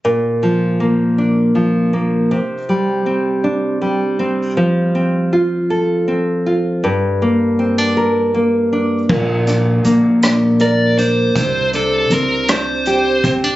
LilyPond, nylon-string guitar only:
\new Staff \with { instrumentName = "Nylon-string guitar" } { \time 6/8 \key bes \major \tempo 4. = 53 bes,8 f8 bes8 d'8 f8 bes8 | c8 g8 c'8 d'8 g8 c'8 | f8 c'8 f'8 a'8 c'8 f'8 | g,8 bes8 c'16 d'16 bes'8 bes8 d'8 |
bes,8 d'8 bes8 d'8 bes'8 d'8 | c8 d'8 c'8 d'8 g'8 c'16 d'16 | }